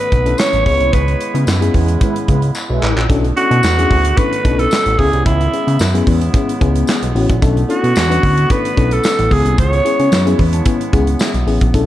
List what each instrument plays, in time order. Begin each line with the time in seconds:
Already playing: woodwind section D3 A3 B3, alto saxophone B4
0.00 closed hi-hat
0.12 analog synth bass B1, kick, closed hi-hat
0.26 fm electric piano C#4 D4 E4 A4, closed hi-hat
0.38 alto saxophone C#5, snare, clap, tambourine
0.53 analog synth bass A1, closed hi-hat
0.66 analog synth bass C#2, woodwind section C#3 G#3 B3 E4, fm electric piano B3 C#4 E4 G#4, alto saxophone C#5, kick, open hi-hat
0.80 analog synth bass C2, closed hi-hat
0.93 analog synth bass C#2, alto saxophone B4, kick, closed hi-hat
1.08 closed hi-hat
1.21 closed hi-hat
1.34 analog synth bass C#3, fm electric piano B3 C#4 E4 B4, closed hi-hat
1.47 analog synth bass F#2, snare, clap, tambourine
1.61 fm electric piano B3 C#4 E4 G#4, closed hi-hat
1.74 analog synth bass E2, analog polysynth G#3 E4 B4, kick, open hi-hat
1.88 closed hi-hat
2.01 analog polysynth G#3 E4 B4, kick, closed hi-hat
2.16 closed hi-hat
2.28 analog synth bass C#2, analog polysynth G#3 E4 B4, kick, closed hi-hat
2.42 closed hi-hat
2.55 clap, tambourine
2.69 analog synth bass B1, analog polysynth G#3 E4 B4
2.82 analog synth bass A1, clap
2.96 analog synth bass A#1, clap
3.09 analog synth bass B1, woodwind section D3 A3 B3, fm electric piano C#4 D4 E4 A4, kick, closed hi-hat
3.24 closed hi-hat
3.36 fm electric piano C#4 D4 E4 A4, alto saxophone F#4, closed hi-hat
3.51 analog synth bass B2, closed hi-hat
3.63 analog synth bass E2, snare, clap, tambourine
3.78 fm electric piano C#4 D4 E4 G#4, closed hi-hat
3.91 analog synth bass D2, kick, open hi-hat
4.05 closed hi-hat
4.17 fm electric piano C#4 D4 E4 A4, alto saxophone B4, kick, closed hi-hat
4.33 closed hi-hat
4.44 analog synth bass B1, fm electric piano C#4 D4 E4 A4, kick, closed hi-hat
4.59 alto saxophone A4, closed hi-hat
4.71 snare, clap, tambourine
4.86 analog synth bass A1, closed hi-hat
4.98 analog synth bass C#2, woodwind section C#3 G#3 E4, fm electric piano B3 C#4 E4 G#4, alto saxophone G#4, kick, open hi-hat
5.13 analog synth bass C2, closed hi-hat
5.26 analog synth bass C#2, alto saxophone E4, kick, closed hi-hat
5.41 closed hi-hat
5.53 fm electric piano B3 C#4 E4 G#4, closed hi-hat
5.67 analog synth bass C#3, closed hi-hat
5.79 analog synth bass F#2, snare, clap, tambourine
5.94 fm electric piano B3 C#4 E4 G#4, closed hi-hat
6.07 analog synth bass E2, kick, open hi-hat
6.21 closed hi-hat
6.33 fm electric piano B3 C#4 E4 G#4, kick, closed hi-hat
6.49 closed hi-hat
6.61 analog synth bass C#2, fm electric piano B3 C#4 E4 G#4, kick, closed hi-hat
6.75 closed hi-hat
6.87 snare, clap, tambourine
7.02 analog synth bass B1, closed hi-hat
7.15 analog synth bass A1, fm electric piano B3 C#4 E4 F#4, open hi-hat
7.29 analog synth bass A#1, kick, closed hi-hat
7.41 analog synth bass B1, woodwind section D3 A3, fm electric piano C#4 D4 E4 A4, kick, closed hi-hat
7.57 closed hi-hat
7.68 fm electric piano C#4 D4 E4 A4, alto saxophone F#4, closed hi-hat
7.84 analog synth bass B2, closed hi-hat
7.96 analog synth bass E2, snare, clap, tambourine
8.10 fm electric piano C#4 D4 E4 B4, closed hi-hat
8.23 analog synth bass D2, kick, open hi-hat
8.38 closed hi-hat
8.49 fm electric piano C#4 D4 E4 A4, alto saxophone B4, kick, closed hi-hat
8.65 closed hi-hat
8.76 analog synth bass B1, fm electric piano C#4 D4 E4 A4, kick, closed hi-hat
8.91 alto saxophone A4, closed hi-hat
9.03 snare, clap, tambourine
9.19 analog synth bass A1, closed hi-hat
9.30 analog synth bass C#2, woodwind section C#3 G#3 E4, fm electric piano B3 C#4 E4 G#4, alto saxophone G#4, kick, open hi-hat
9.45 analog synth bass C2, closed hi-hat
9.58 analog synth bass C#2, alto saxophone C#5, kick, closed hi-hat
9.73 closed hi-hat
9.85 fm electric piano B3 C#4 E4 G#4, closed hi-hat
9.99 analog synth bass C#3, closed hi-hat
10.12 analog synth bass F#2, snare, clap, tambourine
10.26 fm electric piano B3 C#4 E4 G#4, closed hi-hat
10.39 analog synth bass E2, fm electric piano B5, kick, open hi-hat
10.53 fm electric piano A5, closed hi-hat
10.66 fm electric piano B3 C#4 E4 B4 G#5, kick, closed hi-hat
10.81 closed hi-hat
10.93 analog synth bass C#2, fm electric piano B3 C#4 E4 G#4 F#5, kick, closed hi-hat
11.07 closed hi-hat
11.19 fm electric piano E5, snare, clap, tambourine
11.34 analog synth bass B1, closed hi-hat
11.47 analog synth bass A1, fm electric piano B3 C#4 E4 G#4, open hi-hat
11.61 analog synth bass A#1, kick, closed hi-hat
11.74 analog synth bass B1, woodwind section D3 A3, fm electric piano C#4 D4 E4 A4, kick, closed hi-hat